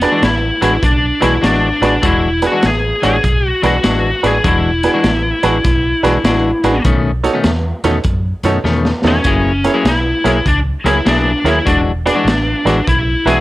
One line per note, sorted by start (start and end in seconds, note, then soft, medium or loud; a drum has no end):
0.02 0.12 D4 medium
0.02 0.24 D4 medium
0.02 0.12 F#4 medium
0.02 0.12 G#4 medium
0.02 0.12 B4 medium
0.02 snare soft
0.02 closed hi-hat medium
0.12 0.29 E3 medium
0.12 0.28 G#3 medium
0.12 0.29 D4 medium
0.12 0.28 F#4 medium
0.22 0.50 A1 medium
0.22 0.62 E4 medium
0.22 snare loud
0.22 closed hi-hat medium
0.61 0.77 A1 medium
0.61 0.75 E3 medium
0.61 0.75 G#3 medium
0.61 0.72 D4 medium
0.61 0.76 D4 medium
0.61 0.84 E4 medium
0.61 0.72 F#4 medium
0.61 0.76 F#4 medium
0.61 0.72 G#4 medium
0.61 0.72 B4 medium
0.61 snare soft
0.61 closed hi-hat medium
0.83 1.10 B1 loud
0.83 1.23 D4 medium
0.83 kick loud
0.83 closed hi-hat medium
1.20 1.37 B1 medium
1.20 1.35 E3 medium
1.20 1.35 G#3 medium
1.20 1.35 D4 medium
1.20 1.32 D4 medium
1.20 1.42 E4 medium
1.20 1.32 F#4 medium
1.20 1.36 F#4 medium
1.20 1.32 G#4 medium
1.20 1.32 B4 medium
1.20 snare soft
1.20 closed hi-hat medium
1.41 1.70 A1 medium
1.41 1.68 E3 medium
1.41 1.68 G#3 medium
1.41 1.68 D4 medium
1.41 1.84 D4 medium
1.41 1.68 F#4 medium
1.41 snare loud
1.41 closed hi-hat medium
1.81 1.96 A1 medium
1.81 1.95 E3 medium
1.81 1.95 G#3 medium
1.81 1.96 D4 medium
1.81 1.93 D4 medium
1.81 1.93 F#4 medium
1.81 1.96 F#4 medium
1.81 1.93 G#4 medium
1.81 1.93 B4 medium
1.81 snare soft
1.81 closed hi-hat medium
1.86 2.06 D4 medium
2.02 2.45 E1 medium
2.02 2.28 E3 medium
2.02 2.28 G#3 medium
2.02 2.28 D4 medium
2.02 2.29 F#4 loud
2.02 kick loud
2.02 closed hi-hat medium
2.06 2.45 E4 loud
2.42 2.53 D4 medium
2.42 2.53 F#4 medium
2.42 2.53 G#4 medium
2.42 2.53 B4 medium
2.42 snare soft
2.42 closed hi-hat medium
2.46 2.66 F#4 loud
2.52 2.69 E3 medium
2.52 2.69 G#3 medium
2.52 2.69 D4 loud
2.52 2.69 F#4 loud
2.63 2.91 A1 loud
2.63 snare loud
2.63 closed hi-hat medium
2.67 3.04 G#4 loud
3.02 3.18 A1 medium
3.02 3.16 E3 medium
3.02 3.16 G#3 medium
3.02 3.16 D4 medium
3.02 3.13 D4 medium
3.02 3.13 F#4 medium
3.02 3.17 F#4 medium
3.02 3.13 G#4 medium
3.02 3.48 G#4 loud
3.02 3.13 C#5 medium
3.02 snare soft
3.02 closed hi-hat medium
3.24 3.51 B1 medium
3.24 kick loud
3.24 closed hi-hat medium
3.48 3.60 F#4 loud
3.62 3.78 B1 medium
3.62 3.76 E3 medium
3.62 3.77 G#3 medium
3.62 3.77 D4 medium
3.62 3.74 D4 medium
3.62 3.74 F#4 medium
3.62 3.77 F#4 medium
3.62 4.26 F#4 loud
3.62 3.74 G#4 medium
3.62 3.74 B4 medium
3.62 snare soft
3.62 closed hi-hat medium
3.83 4.12 A1 medium
3.83 4.09 E3 medium
3.83 4.09 G#3 medium
3.83 4.09 D4 medium
3.83 4.10 F#4 medium
3.83 snare loud
3.83 closed hi-hat medium
4.23 4.38 A1 medium
4.23 4.37 E3 medium
4.23 4.37 G#3 medium
4.23 4.34 D4 medium
4.23 4.37 D4 medium
4.23 4.34 F#4 medium
4.23 4.37 F#4 medium
4.23 4.33 G#4 medium
4.23 4.33 B4 medium
4.23 snare soft
4.23 closed hi-hat medium
4.27 4.47 G#4 loud
4.44 4.86 E1 loud
4.44 4.69 E3 loud
4.44 4.70 G#3 medium
4.44 4.70 D4 loud
4.44 6.82 E4 medium
4.44 4.70 F#4 medium
4.44 kick loud
4.44 closed hi-hat medium
4.83 4.94 D4 medium
4.83 4.94 F#4 medium
4.83 4.94 G#4 medium
4.83 4.94 B4 medium
4.83 snare soft
4.83 closed hi-hat medium
4.94 5.11 E3 medium
4.94 5.10 G#3 medium
4.94 5.10 D4 medium
4.94 5.10 F#4 medium
5.04 5.32 A1 medium
5.04 snare loud
5.04 closed hi-hat medium
5.43 5.58 A1 medium
5.43 5.57 E3 medium
5.43 5.57 G#3 medium
5.43 5.54 D4 medium
5.43 5.57 D4 medium
5.43 5.54 F#4 medium
5.43 5.57 F#4 loud
5.43 5.54 G#4 medium
5.43 5.54 B4 loud
5.43 snare soft
5.43 closed hi-hat medium
5.64 5.92 B1 medium
5.64 kick loud
5.64 snare soft
5.64 closed hi-hat medium
6.03 6.18 B1 medium
6.03 6.17 E3 medium
6.03 6.17 G#3 medium
6.03 6.14 D4 medium
6.03 6.17 D4 medium
6.03 6.14 F#4 medium
6.03 6.18 F#4 medium
6.03 6.14 G#4 medium
6.03 6.14 B4 medium
6.03 snare soft
6.03 closed hi-hat medium
6.24 6.51 A1 medium
6.24 6.50 E3 medium
6.24 6.50 G#3 medium
6.24 6.50 D4 medium
6.24 6.50 F#4 medium
6.24 snare loud
6.24 closed hi-hat medium
6.64 6.78 A1 medium
6.64 6.77 E3 medium
6.64 6.77 G#3 medium
6.64 6.74 D4 medium
6.64 6.77 D4 medium
6.64 6.74 F#4 medium
6.64 6.78 F#4 medium
6.64 6.74 G#4 medium
6.64 6.75 B4 medium
6.64 snare soft
6.64 closed hi-hat medium
6.84 7.27 B1 loud
6.84 7.10 B2 loud
6.84 7.10 D#3 loud
6.84 7.10 A3 loud
6.84 7.11 C#4 loud
6.84 kick loud
6.84 closed hi-hat medium
7.23 7.34 D#4 medium
7.23 7.34 F#4 medium
7.23 7.34 A4 medium
7.23 7.34 C#5 medium
7.23 snare soft
7.23 closed hi-hat medium
7.33 7.51 B2 medium
7.33 7.51 D#3 medium
7.33 7.51 A3 medium
7.33 7.50 C#4 medium
7.44 7.72 E2 medium
7.44 snare loud
7.44 closed hi-hat medium
7.84 7.98 E2 medium
7.84 7.98 B2 medium
7.84 7.98 D#3 medium
7.84 7.98 A3 medium
7.84 7.98 C#4 medium
7.84 7.95 D#4 medium
7.84 7.95 F#4 medium
7.84 7.95 A4 medium
7.84 7.95 C#5 loud
7.84 snare soft
7.84 closed hi-hat medium
8.04 8.32 F#2 loud
8.04 kick loud
8.04 closed hi-hat medium
8.43 8.58 F#2 medium
8.43 8.58 B2 medium
8.43 8.58 D#3 medium
8.43 8.58 A3 medium
8.43 8.58 C#4 loud
8.43 8.55 D#4 medium
8.43 8.55 F#4 medium
8.43 8.55 A4 medium
8.43 8.55 C#5 medium
8.43 snare soft
8.43 closed hi-hat medium
8.64 8.92 E2 medium
8.64 8.90 B2 medium
8.64 8.90 D#3 medium
8.64 8.90 A3 medium
8.64 8.91 C#4 medium
8.64 snare medium
8.85 snare medium
9.04 9.19 E2 medium
9.04 9.18 B2 medium
9.04 9.18 D#3 medium
9.04 9.18 A3 medium
9.04 9.18 C#4 medium
9.04 9.15 D#4 medium
9.04 9.15 F#4 medium
9.04 9.15 A4 medium
9.04 9.15 C#5 medium
9.04 snare medium
9.08 9.88 C#4 medium
9.24 9.67 F#1 medium
9.24 9.51 F#3 medium
9.24 9.51 A#3 medium
9.24 9.51 E4 medium
9.24 9.52 G#4 loud
9.24 kick loud
9.24 snare soft
9.24 closed hi-hat medium
9.64 9.75 E4 medium
9.64 9.75 G#4 medium
9.64 9.75 A#4 medium
9.64 9.75 C#5 medium
9.64 snare soft
9.64 closed hi-hat medium
9.74 9.91 F#3 medium
9.74 9.91 A#3 medium
9.74 9.91 E4 medium
9.74 9.91 G#4 medium
9.85 10.12 B1 medium
9.85 10.48 E4 medium
9.85 snare loud
9.85 closed hi-hat medium
10.24 10.39 B1 medium
10.24 10.38 F#3 medium
10.24 10.38 A#3 medium
10.24 10.35 E4 medium
10.24 10.39 E4 medium
10.24 10.35 G#4 medium
10.24 10.39 G#4 loud
10.24 10.35 A#4 medium
10.24 10.35 C#5 medium
10.24 snare soft
10.24 closed hi-hat medium
10.46 10.73 C#2 medium
10.46 10.58 D4 medium
10.46 kick loud
10.46 closed hi-hat medium
10.84 10.99 C#2 medium
10.84 10.98 F#3 medium
10.84 10.98 A#3 medium
10.84 10.99 E4 medium
10.84 10.96 E4 medium
10.84 11.07 E4 medium
10.84 10.99 G#4 medium
10.84 10.96 G#4 medium
10.84 10.96 A#4 medium
10.84 10.96 C#5 medium
10.84 snare soft
10.84 closed hi-hat medium
11.05 11.33 B1 medium
11.05 11.31 F#3 medium
11.05 11.31 A#3 medium
11.05 11.47 D4 medium
11.05 11.31 E4 loud
11.05 11.32 G#4 medium
11.05 snare loud
11.05 closed hi-hat medium
11.44 11.59 D#2 medium
11.44 11.58 F#3 medium
11.44 11.59 A#3 medium
11.44 11.55 E4 medium
11.44 11.59 E4 medium
11.44 11.55 G#4 medium
11.44 11.59 G#4 medium
11.44 11.55 A#4 medium
11.44 11.55 C#5 medium
11.44 snare soft
11.44 closed hi-hat medium
11.48 11.68 E4 medium
11.65 12.08 E1 medium
11.65 11.91 E3 medium
11.65 11.91 G#3 medium
11.65 11.91 D4 loud
11.65 11.79 D4 loud
11.65 11.91 F#4 loud
11.65 kick loud
11.65 closed hi-hat medium
12.06 12.88 D4 medium
12.06 12.16 F#4 medium
12.06 12.16 G#4 medium
12.06 12.16 B4 medium
12.06 12.16 D5 medium
12.06 snare soft
12.06 closed hi-hat medium
12.15 12.32 E3 medium
12.15 12.32 G#3 medium
12.15 12.32 D4 medium
12.15 12.32 F#4 loud
12.25 12.53 A1 loud
12.25 snare loud
12.25 closed hi-hat medium
12.65 12.80 A1 medium
12.65 12.79 E3 medium
12.65 12.79 G#3 medium
12.65 12.79 D4 medium
12.65 12.76 F#4 medium
12.65 12.80 F#4 medium
12.65 12.76 G#4 medium
12.65 12.76 B4 medium
12.65 12.76 D5 medium
12.65 snare soft
12.65 closed hi-hat medium
12.87 13.14 B1 medium
12.87 13.28 E4 loud
12.87 kick loud
12.87 closed hi-hat medium
13.25 13.40 B1 medium
13.25 13.39 E3 medium
13.25 13.39 G#3 medium
13.25 13.39 D4 medium
13.25 13.36 F#4 medium
13.25 13.40 F#4 medium
13.25 13.36 G#4 medium
13.25 13.40 G#4 loud
13.25 13.36 B4 medium
13.25 13.36 E5 medium
13.25 snare soft
13.25 closed hi-hat medium